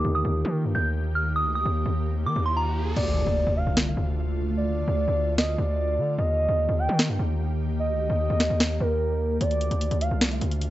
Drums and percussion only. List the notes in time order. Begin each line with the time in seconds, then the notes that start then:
2.96 crash
3.77 snare
5.38 snare
6.99 snare
8.40 snare
8.60 snare
9.41 closed hi-hat
9.51 closed hi-hat
9.61 closed hi-hat
9.71 closed hi-hat
9.81 closed hi-hat
9.91 closed hi-hat
10.01 closed hi-hat
10.21 snare, closed hi-hat
10.31 closed hi-hat
10.41 closed hi-hat
10.51 closed hi-hat
10.62 closed hi-hat